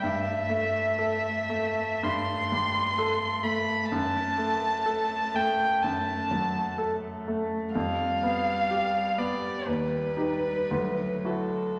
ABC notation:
X:1
M:4/4
L:1/8
Q:1/4=63
K:Ador
V:1 name="Violin"
e4 c'3 b | a3 g a2 z2 | =f3 d B3 A |]
V:2 name="Grand piano"
G,, A, A A, G,, G, A A, | F,, A, A A, F,, F, A A, | =F,, B, G B, _E,, [_EG] D,, [=E^F] |]
V:3 name="Cello" clef=bass
A,8 | A,8 | G,6 F,2 |]